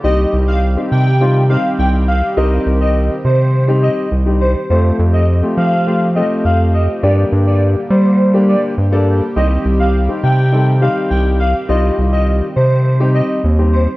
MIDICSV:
0, 0, Header, 1, 5, 480
1, 0, Start_track
1, 0, Tempo, 582524
1, 33, Time_signature, 4, 2, 24, 8
1, 11510, End_track
2, 0, Start_track
2, 0, Title_t, "Digital synth lead"
2, 0, Program_c, 0, 84
2, 33, Note_on_c, 0, 75, 105
2, 112, Note_off_c, 0, 75, 0
2, 395, Note_on_c, 0, 77, 73
2, 473, Note_off_c, 0, 77, 0
2, 753, Note_on_c, 0, 79, 87
2, 1092, Note_off_c, 0, 79, 0
2, 1233, Note_on_c, 0, 77, 84
2, 1312, Note_off_c, 0, 77, 0
2, 1473, Note_on_c, 0, 79, 85
2, 1552, Note_off_c, 0, 79, 0
2, 1712, Note_on_c, 0, 77, 90
2, 1791, Note_off_c, 0, 77, 0
2, 1953, Note_on_c, 0, 75, 100
2, 2032, Note_off_c, 0, 75, 0
2, 2314, Note_on_c, 0, 75, 82
2, 2393, Note_off_c, 0, 75, 0
2, 2673, Note_on_c, 0, 72, 97
2, 3011, Note_off_c, 0, 72, 0
2, 3154, Note_on_c, 0, 75, 89
2, 3233, Note_off_c, 0, 75, 0
2, 3633, Note_on_c, 0, 72, 89
2, 3712, Note_off_c, 0, 72, 0
2, 3874, Note_on_c, 0, 72, 109
2, 3952, Note_off_c, 0, 72, 0
2, 4232, Note_on_c, 0, 75, 75
2, 4311, Note_off_c, 0, 75, 0
2, 4592, Note_on_c, 0, 77, 95
2, 4931, Note_off_c, 0, 77, 0
2, 5074, Note_on_c, 0, 75, 82
2, 5152, Note_off_c, 0, 75, 0
2, 5315, Note_on_c, 0, 77, 83
2, 5393, Note_off_c, 0, 77, 0
2, 5552, Note_on_c, 0, 75, 80
2, 5632, Note_off_c, 0, 75, 0
2, 5794, Note_on_c, 0, 74, 113
2, 5873, Note_off_c, 0, 74, 0
2, 6153, Note_on_c, 0, 74, 78
2, 6232, Note_off_c, 0, 74, 0
2, 6512, Note_on_c, 0, 72, 84
2, 6851, Note_off_c, 0, 72, 0
2, 6994, Note_on_c, 0, 74, 85
2, 7073, Note_off_c, 0, 74, 0
2, 7713, Note_on_c, 0, 75, 106
2, 7792, Note_off_c, 0, 75, 0
2, 8073, Note_on_c, 0, 77, 69
2, 8152, Note_off_c, 0, 77, 0
2, 8433, Note_on_c, 0, 79, 94
2, 8771, Note_off_c, 0, 79, 0
2, 8914, Note_on_c, 0, 77, 85
2, 8993, Note_off_c, 0, 77, 0
2, 9151, Note_on_c, 0, 79, 89
2, 9231, Note_off_c, 0, 79, 0
2, 9392, Note_on_c, 0, 77, 90
2, 9471, Note_off_c, 0, 77, 0
2, 9632, Note_on_c, 0, 75, 104
2, 9712, Note_off_c, 0, 75, 0
2, 9991, Note_on_c, 0, 75, 81
2, 10071, Note_off_c, 0, 75, 0
2, 10351, Note_on_c, 0, 72, 97
2, 10690, Note_off_c, 0, 72, 0
2, 10832, Note_on_c, 0, 75, 90
2, 10912, Note_off_c, 0, 75, 0
2, 11313, Note_on_c, 0, 72, 92
2, 11392, Note_off_c, 0, 72, 0
2, 11510, End_track
3, 0, Start_track
3, 0, Title_t, "Grand piano"
3, 0, Program_c, 1, 0
3, 31, Note_on_c, 1, 55, 86
3, 32, Note_on_c, 1, 60, 73
3, 34, Note_on_c, 1, 63, 79
3, 34, Note_on_c, 1, 67, 91
3, 424, Note_off_c, 1, 55, 0
3, 424, Note_off_c, 1, 60, 0
3, 425, Note_off_c, 1, 63, 0
3, 425, Note_off_c, 1, 67, 0
3, 631, Note_on_c, 1, 55, 77
3, 633, Note_on_c, 1, 60, 71
3, 634, Note_on_c, 1, 63, 70
3, 635, Note_on_c, 1, 67, 88
3, 867, Note_off_c, 1, 55, 0
3, 868, Note_off_c, 1, 60, 0
3, 868, Note_off_c, 1, 63, 0
3, 869, Note_off_c, 1, 67, 0
3, 993, Note_on_c, 1, 55, 83
3, 993, Note_on_c, 1, 60, 75
3, 995, Note_on_c, 1, 63, 75
3, 997, Note_on_c, 1, 65, 92
3, 1150, Note_off_c, 1, 55, 0
3, 1150, Note_off_c, 1, 60, 0
3, 1151, Note_off_c, 1, 63, 0
3, 1152, Note_off_c, 1, 65, 0
3, 1232, Note_on_c, 1, 55, 84
3, 1234, Note_on_c, 1, 60, 79
3, 1236, Note_on_c, 1, 63, 78
3, 1236, Note_on_c, 1, 67, 97
3, 1703, Note_off_c, 1, 55, 0
3, 1704, Note_off_c, 1, 60, 0
3, 1705, Note_off_c, 1, 63, 0
3, 1705, Note_off_c, 1, 67, 0
3, 1951, Note_on_c, 1, 55, 86
3, 1952, Note_on_c, 1, 60, 79
3, 1954, Note_on_c, 1, 63, 77
3, 1955, Note_on_c, 1, 70, 94
3, 2579, Note_off_c, 1, 55, 0
3, 2580, Note_off_c, 1, 60, 0
3, 2580, Note_off_c, 1, 63, 0
3, 2581, Note_off_c, 1, 70, 0
3, 3031, Note_on_c, 1, 55, 89
3, 3033, Note_on_c, 1, 60, 84
3, 3035, Note_on_c, 1, 63, 82
3, 3036, Note_on_c, 1, 67, 98
3, 3346, Note_off_c, 1, 55, 0
3, 3346, Note_off_c, 1, 60, 0
3, 3347, Note_off_c, 1, 63, 0
3, 3348, Note_off_c, 1, 67, 0
3, 3512, Note_on_c, 1, 55, 81
3, 3513, Note_on_c, 1, 60, 72
3, 3515, Note_on_c, 1, 63, 70
3, 3516, Note_on_c, 1, 67, 84
3, 3748, Note_off_c, 1, 55, 0
3, 3748, Note_off_c, 1, 60, 0
3, 3749, Note_off_c, 1, 63, 0
3, 3750, Note_off_c, 1, 67, 0
3, 3872, Note_on_c, 1, 57, 83
3, 3873, Note_on_c, 1, 60, 75
3, 3874, Note_on_c, 1, 65, 78
3, 3875, Note_on_c, 1, 67, 86
3, 4264, Note_off_c, 1, 57, 0
3, 4265, Note_off_c, 1, 60, 0
3, 4266, Note_off_c, 1, 65, 0
3, 4266, Note_off_c, 1, 67, 0
3, 4471, Note_on_c, 1, 57, 76
3, 4473, Note_on_c, 1, 60, 68
3, 4474, Note_on_c, 1, 65, 65
3, 4476, Note_on_c, 1, 67, 84
3, 4707, Note_off_c, 1, 57, 0
3, 4708, Note_off_c, 1, 60, 0
3, 4709, Note_off_c, 1, 65, 0
3, 4710, Note_off_c, 1, 67, 0
3, 4834, Note_on_c, 1, 57, 80
3, 4835, Note_on_c, 1, 60, 73
3, 4836, Note_on_c, 1, 65, 70
3, 4837, Note_on_c, 1, 67, 86
3, 4990, Note_off_c, 1, 57, 0
3, 4991, Note_off_c, 1, 60, 0
3, 4991, Note_off_c, 1, 65, 0
3, 4992, Note_off_c, 1, 67, 0
3, 5072, Note_on_c, 1, 57, 83
3, 5074, Note_on_c, 1, 60, 75
3, 5075, Note_on_c, 1, 65, 75
3, 5077, Note_on_c, 1, 67, 92
3, 5543, Note_off_c, 1, 57, 0
3, 5544, Note_off_c, 1, 60, 0
3, 5544, Note_off_c, 1, 65, 0
3, 5545, Note_off_c, 1, 67, 0
3, 5791, Note_on_c, 1, 55, 87
3, 5792, Note_on_c, 1, 58, 74
3, 5793, Note_on_c, 1, 62, 80
3, 5794, Note_on_c, 1, 67, 94
3, 6419, Note_off_c, 1, 55, 0
3, 6420, Note_off_c, 1, 58, 0
3, 6420, Note_off_c, 1, 62, 0
3, 6420, Note_off_c, 1, 67, 0
3, 6871, Note_on_c, 1, 55, 90
3, 6873, Note_on_c, 1, 58, 84
3, 6874, Note_on_c, 1, 62, 83
3, 6876, Note_on_c, 1, 67, 99
3, 7186, Note_off_c, 1, 55, 0
3, 7187, Note_off_c, 1, 58, 0
3, 7187, Note_off_c, 1, 62, 0
3, 7188, Note_off_c, 1, 67, 0
3, 7351, Note_on_c, 1, 55, 93
3, 7353, Note_on_c, 1, 58, 88
3, 7355, Note_on_c, 1, 62, 88
3, 7356, Note_on_c, 1, 69, 102
3, 7587, Note_off_c, 1, 55, 0
3, 7588, Note_off_c, 1, 58, 0
3, 7589, Note_off_c, 1, 62, 0
3, 7590, Note_off_c, 1, 69, 0
3, 7713, Note_on_c, 1, 55, 83
3, 7714, Note_on_c, 1, 60, 79
3, 7714, Note_on_c, 1, 63, 76
3, 7716, Note_on_c, 1, 67, 92
3, 8105, Note_off_c, 1, 55, 0
3, 8105, Note_off_c, 1, 60, 0
3, 8106, Note_off_c, 1, 63, 0
3, 8106, Note_off_c, 1, 67, 0
3, 8312, Note_on_c, 1, 55, 78
3, 8312, Note_on_c, 1, 60, 69
3, 8314, Note_on_c, 1, 63, 69
3, 8315, Note_on_c, 1, 67, 83
3, 8547, Note_off_c, 1, 55, 0
3, 8548, Note_off_c, 1, 60, 0
3, 8549, Note_off_c, 1, 63, 0
3, 8549, Note_off_c, 1, 67, 0
3, 8671, Note_on_c, 1, 55, 80
3, 8673, Note_on_c, 1, 60, 76
3, 8675, Note_on_c, 1, 63, 74
3, 8676, Note_on_c, 1, 69, 90
3, 8829, Note_off_c, 1, 55, 0
3, 8830, Note_off_c, 1, 60, 0
3, 8831, Note_off_c, 1, 63, 0
3, 8831, Note_off_c, 1, 69, 0
3, 8911, Note_on_c, 1, 55, 85
3, 8912, Note_on_c, 1, 60, 78
3, 8914, Note_on_c, 1, 63, 80
3, 8915, Note_on_c, 1, 67, 97
3, 9382, Note_off_c, 1, 55, 0
3, 9383, Note_off_c, 1, 60, 0
3, 9384, Note_off_c, 1, 63, 0
3, 9384, Note_off_c, 1, 67, 0
3, 9630, Note_on_c, 1, 55, 87
3, 9632, Note_on_c, 1, 60, 76
3, 9633, Note_on_c, 1, 63, 82
3, 9634, Note_on_c, 1, 65, 99
3, 10259, Note_off_c, 1, 55, 0
3, 10260, Note_off_c, 1, 60, 0
3, 10260, Note_off_c, 1, 63, 0
3, 10261, Note_off_c, 1, 65, 0
3, 10712, Note_on_c, 1, 55, 85
3, 10712, Note_on_c, 1, 60, 81
3, 10714, Note_on_c, 1, 63, 84
3, 10715, Note_on_c, 1, 67, 100
3, 11026, Note_off_c, 1, 55, 0
3, 11026, Note_off_c, 1, 60, 0
3, 11027, Note_off_c, 1, 63, 0
3, 11028, Note_off_c, 1, 67, 0
3, 11192, Note_on_c, 1, 55, 78
3, 11193, Note_on_c, 1, 60, 72
3, 11194, Note_on_c, 1, 63, 68
3, 11196, Note_on_c, 1, 67, 84
3, 11428, Note_off_c, 1, 55, 0
3, 11428, Note_off_c, 1, 60, 0
3, 11429, Note_off_c, 1, 63, 0
3, 11430, Note_off_c, 1, 67, 0
3, 11510, End_track
4, 0, Start_track
4, 0, Title_t, "Analog synth pad"
4, 0, Program_c, 2, 89
4, 0, Note_on_c, 2, 55, 74
4, 37, Note_on_c, 2, 51, 83
4, 37, Note_on_c, 2, 67, 90
4, 38, Note_on_c, 2, 60, 77
4, 3842, Note_off_c, 2, 51, 0
4, 3842, Note_off_c, 2, 55, 0
4, 3842, Note_off_c, 2, 60, 0
4, 3842, Note_off_c, 2, 67, 0
4, 3874, Note_on_c, 2, 53, 81
4, 3875, Note_on_c, 2, 57, 73
4, 3875, Note_on_c, 2, 60, 75
4, 3875, Note_on_c, 2, 67, 91
4, 5774, Note_off_c, 2, 53, 0
4, 5775, Note_off_c, 2, 57, 0
4, 5775, Note_off_c, 2, 60, 0
4, 5791, Note_on_c, 2, 55, 78
4, 5792, Note_on_c, 2, 58, 75
4, 5793, Note_on_c, 2, 50, 83
4, 7694, Note_off_c, 2, 50, 0
4, 7694, Note_off_c, 2, 58, 0
4, 7715, Note_on_c, 2, 60, 77
4, 7716, Note_on_c, 2, 51, 81
4, 11510, Note_off_c, 2, 51, 0
4, 11510, Note_off_c, 2, 55, 0
4, 11510, Note_off_c, 2, 60, 0
4, 11510, Note_off_c, 2, 67, 0
4, 11510, End_track
5, 0, Start_track
5, 0, Title_t, "Analog synth bass"
5, 0, Program_c, 3, 38
5, 34, Note_on_c, 3, 36, 114
5, 213, Note_off_c, 3, 36, 0
5, 273, Note_on_c, 3, 36, 110
5, 631, Note_off_c, 3, 36, 0
5, 754, Note_on_c, 3, 48, 98
5, 1291, Note_off_c, 3, 48, 0
5, 1473, Note_on_c, 3, 36, 101
5, 1831, Note_off_c, 3, 36, 0
5, 1954, Note_on_c, 3, 36, 114
5, 2133, Note_off_c, 3, 36, 0
5, 2194, Note_on_c, 3, 36, 106
5, 2552, Note_off_c, 3, 36, 0
5, 2674, Note_on_c, 3, 48, 97
5, 3211, Note_off_c, 3, 48, 0
5, 3393, Note_on_c, 3, 36, 100
5, 3751, Note_off_c, 3, 36, 0
5, 3873, Note_on_c, 3, 41, 116
5, 4052, Note_off_c, 3, 41, 0
5, 4112, Note_on_c, 3, 41, 103
5, 4471, Note_off_c, 3, 41, 0
5, 4593, Note_on_c, 3, 53, 94
5, 5130, Note_off_c, 3, 53, 0
5, 5312, Note_on_c, 3, 41, 96
5, 5671, Note_off_c, 3, 41, 0
5, 5792, Note_on_c, 3, 43, 116
5, 5972, Note_off_c, 3, 43, 0
5, 6032, Note_on_c, 3, 43, 107
5, 6391, Note_off_c, 3, 43, 0
5, 6512, Note_on_c, 3, 55, 91
5, 7050, Note_off_c, 3, 55, 0
5, 7232, Note_on_c, 3, 43, 97
5, 7591, Note_off_c, 3, 43, 0
5, 7714, Note_on_c, 3, 36, 120
5, 7893, Note_off_c, 3, 36, 0
5, 7953, Note_on_c, 3, 36, 105
5, 8311, Note_off_c, 3, 36, 0
5, 8434, Note_on_c, 3, 48, 95
5, 8971, Note_off_c, 3, 48, 0
5, 9153, Note_on_c, 3, 36, 101
5, 9511, Note_off_c, 3, 36, 0
5, 9633, Note_on_c, 3, 36, 116
5, 9812, Note_off_c, 3, 36, 0
5, 9874, Note_on_c, 3, 36, 109
5, 10232, Note_off_c, 3, 36, 0
5, 10354, Note_on_c, 3, 48, 95
5, 10891, Note_off_c, 3, 48, 0
5, 11074, Note_on_c, 3, 39, 104
5, 11432, Note_off_c, 3, 39, 0
5, 11510, End_track
0, 0, End_of_file